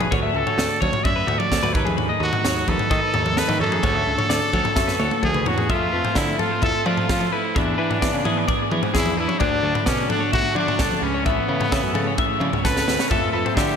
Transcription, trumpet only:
Already playing: B4
0.35 A4
0.82 C#5
1.04 E5
1.38 D5
1.73 B4
2.23 F#4
2.69 A4
3.38 B4
3.61 A4
5.24 G#4
5.48 F#4
5.71 F4
6.17 E4
6.40 F4
6.64 A4
6.87 F4
7.32 E4
7.57 D4
8.97 E4
9.19 E4
9.40 D4
9.87 C#4
10.11 D4
10.33 F#4
10.57 D4
11.03 C#4
11.26 B3
12.65 B4
13.09 A4
13.32 A4
13.55 G4

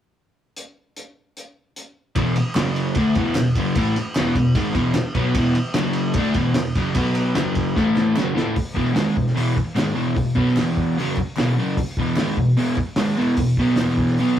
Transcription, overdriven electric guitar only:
2.16 E2 B2 E3
2.37 muted overdriven electric guitar stroke
2.55 F#2 C#3 F#3
2.97 D3 A3 D4
3.17 E2 B2 E3
3.37 E2 B2
3.58 F#2 C#3 F#3
3.77 A2 E3 A3
3.97 muted overdriven electric guitar stroke
4.17 E2 B2 E3
4.37 E2 B2
4.56 G#2 D#3 G#3
4.73 E2 B2 E3
4.96 muted overdriven electric guitar stroke
5.15 B2 F#3 B3
5.36 E2 B2 E3
5.56 muted overdriven electric guitar stroke
5.75 F#2 C#3 F#3
6.16 D3 A3 D4
6.35 E2 B2 E3
6.55 E2 B2
6.76 F#2 C#3 F#3
6.95 B2 F#3 B3
7.35 F#2 C#3 F#3
7.76 A2 E3 A3
8.16 F#2 C#3 F#3
8.34 A2 E3 A3
8.74 E2 B2 E3
8.94 G#2 D#3 G#3
9.17 E2 B2
9.35 E2 B2 E3
9.56 muted overdriven electric guitar stroke
9.75 G#2 D#3 G#3
9.95 E2 B2 E3
10.16 E2 B2
10.35 B2 F#3 B3
10.56 E2 B2 E3
10.97 F#2 C#3 F#3
11.15 muted overdriven electric guitar stroke
11.37 E2 B2 E3
11.56 F#2 C#3 F#3
11.99 E2 B2 E3
12.17 G#2 D#3 G#3
12.38 E2 B2
12.57 E2 B2 E3
12.79 muted overdriven electric guitar stroke
12.97 G#2 D#3 G#3
13.17 E2 B2 E3
13.39 E2 B2
13.59 B2 F#3 B3
13.79 E2 B2 E3
14.20 B2 F#3 B3

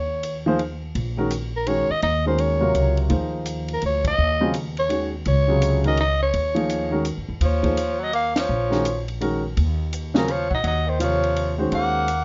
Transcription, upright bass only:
Already playing: D#2
0.95 A#1
1.90 muted upright bass stroke
2.03 D#2
2.74 C#2
3.10 D#2
3.83 D2
4.18 D#2
5.26 C#2
6.34 D#2
7.17 F#2
7.29 E2
7.41 D#2
8.49 A#1
9.57 D#2
10.51 A#2
10.64 D#2
11.72 D#2

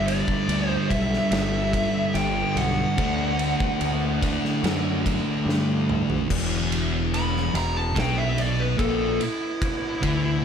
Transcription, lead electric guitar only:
0.07 D5
0.69 C5
0.90 E5
1.31 E5
2.14 G5
2.58 F#5
7.14 B5
7.56 A#5
7.77 A5
7.99 G5
8.18 E5
8.40 D5
8.60 B4
8.79 A4
9.21 E4

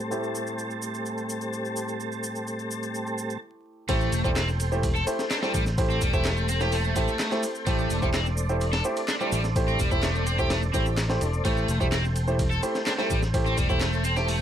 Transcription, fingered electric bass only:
3.89 A1
4.12 E1
5.54 A1
6.02 E1
6.96 A1
7.67 A1
7.90 E1
9.32 A1
9.79 E1
10.74 A1
11.21 E1
11.45 A1
11.68 E1
13.10 A1
13.57 E1

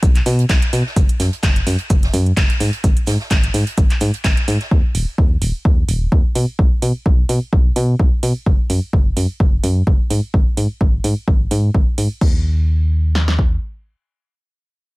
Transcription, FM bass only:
0.03 B1
0.26 B2
0.49 B1
0.73 B2
0.96 F#1
1.20 F#2
1.43 F#1
1.67 F#2
1.90 F#1
2.14 F#2
2.37 F#1
2.60 G#2
2.84 G#1
3.07 G#2
3.31 G#1
3.54 G#2
3.78 G#1
4.01 G#2
4.24 G#1
4.48 G#2
4.71 D#2
4.95 D#1
5.18 D#2
5.42 D#1
5.65 D#2
5.89 D#1
6.12 D#2
6.35 B2
6.59 B1
6.82 B2
7.06 B1
7.29 B2
7.53 B1
7.76 B2
8.00 B1
8.23 B2
8.46 F#1
8.70 F#2
8.93 F#1
9.17 F#2
9.40 F#1
9.64 F#2
9.87 F#1
10.10 G#2
10.34 G#1
10.57 G#2
10.81 G#1
11.04 G#2
11.28 G#1
11.51 G#2
11.74 G#1
11.98 G#2
12.21 D#2

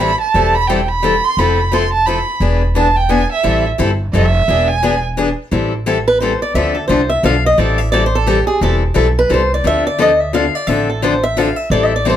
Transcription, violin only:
0.00 B5
0.21 A5
0.55 B5
0.68 G5
0.89 B5
1.24 C6
1.39 B5
1.74 C6
1.93 A5
2.06 B5
2.76 A5
2.97 G5
3.10 G#5
3.33 E5
4.14 E5
4.68 G#5

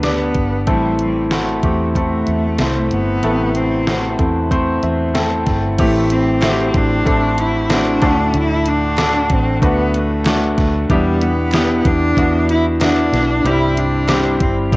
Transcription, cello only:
0.04 B3
0.69 G3
1.01 G3
1.33 A3
1.97 A3
2.93 B3
3.57 C4
5.80 A3
6.12 C4
6.76 D4
7.41 E4
7.71 D4
8.36 E4
8.68 D4
9.32 C4
9.65 B3
9.96 A3
10.91 G3
11.23 B3
11.87 D4
12.50 E4
12.82 D4
13.46 E4
13.78 D4
14.42 C4

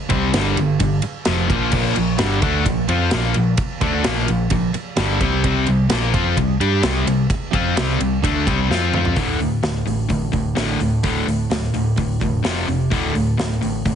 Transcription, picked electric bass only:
0.10 C2
0.33 G1
0.57 G1
0.80 G1
1.27 F1
1.49 A#1
1.73 A#1
1.96 A#1
2.19 G1
2.42 D2
2.66 A#1
2.88 F2
3.13 A#1
3.36 A#1
3.82 D2
4.05 A#1
4.29 A#1
4.51 A#1
4.74 muted picked electric bass stroke
4.97 G1
5.21 C2
5.44 C2
5.68 C2
5.91 A#1
6.14 F2
6.37 C2
6.60 G2
6.83 C2
7.06 C2
7.53 F2
7.77 C2
8.00 C2
8.23 D2
8.47 C2
8.70 F2
8.93 F2
9.17 D1
9.39 D1
9.63 D1
9.86 A1
10.10 A1
10.33 D1
10.56 A1
10.80 D1
11.03 D1
11.26 D1
11.50 D1
11.73 D1
11.98 D2
12.21 E1
12.43 F1
12.68 F1
12.92 D1
13.15 D1
13.38 D1
13.62 A1
13.85 A1

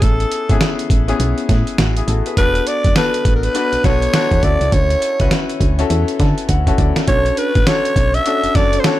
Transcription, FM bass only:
0.02 A1
0.50 G#1
0.90 A1
1.20 B1
1.49 A2
1.78 A1
2.08 A1
2.37 E1
2.85 F#1
3.25 A1
3.73 B1
3.84 B1
4.31 E2
4.43 D2
4.61 C#2
4.72 D2
5.20 C#2
5.60 D2
5.90 E2
6.20 D3
6.49 D2
6.78 D2
7.08 B1
7.55 A1
7.96 B1
8.44 F#1
8.55 F#1

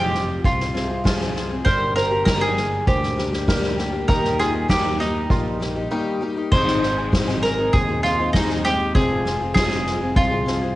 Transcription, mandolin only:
0.00 G4
0.45 F4
1.65 C5
1.96 A#4
2.25 A#4
2.41 G#4
2.88 G4
4.08 A#4
4.39 G#4
4.70 G4
5.00 D#4
6.52 C5
7.43 A#4
7.73 G#4
8.03 F4
8.33 D#4
8.65 G4
8.95 G#4
9.54 G#4
10.16 F4

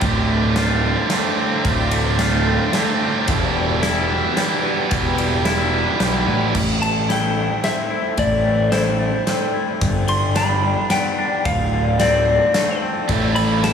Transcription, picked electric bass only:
0.02 D1
1.65 D1
3.28 E1
4.91 E1
6.00 B1
6.27 A1
6.55 A1
8.17 A1
9.81 G1
11.45 D1
13.09 A1

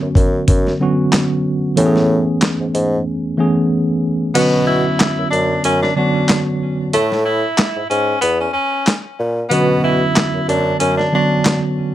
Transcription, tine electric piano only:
Already playing: D3 F#3 B3 C#4 F#4
0.79 D3 F#3 B3 C#4 F#4
1.76 E3 A3 B3 C#4 G4
1.85 G#4
3.37 E3 A3 B3 C#4 G#4
4.34 D3 F#3 B3 C#4 F#4
5.96 D3 F#3 B3 F#4 C#5
9.50 D3 F#3 B3 C#4 F#4
11.12 D3 F#3 B3 F#4 C#5

